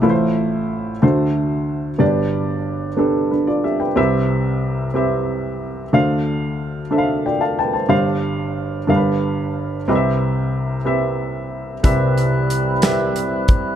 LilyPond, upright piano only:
<<
  \new Staff \with { instrumentName = "Upright piano" } { \time 6/8 \key c \major \tempo 4. = 61 << { r2. | r2 <d' b'>16 <f' d''>16 <g' e''>16 <b' g''>16~ | <b' g''>16 r2 r8. | r2 <f' d'' g''>16 <a' f'' a''>16 <b' g'' a''>16 <c'' a''>16~ |
<c'' a''>16 r2 r8. | r2. | r2. | } \\ { <a e' f' b' c''>4. <a d' fis' c''>4. | <b d' g' d''>4. <b d' g' a'>4. | <c' g' b' e''>4. <c' g' b' e''>4. | <d' a' c'' f''>4. <d' a' c'' e'' f''>4. |
<d' g' c'' f''>4. <d' g' bes' b' f''>4. | <c' g' b' ees'' e''>4. <c' g' b' e''>4. | <c' g' b' e''>4. <c' g' b' e''>4. | } >> }
  \new Staff \with { instrumentName = "Upright piano" } { \clef bass \time 6/8 \key c \major <a,, a,>4. <d, d>4. | <g,, g,>2. | <c, c>2. | <d, d>2. |
<g,, g,>4. <g,, g,>4. | <c, c>2. | <c, c>2. | }
>>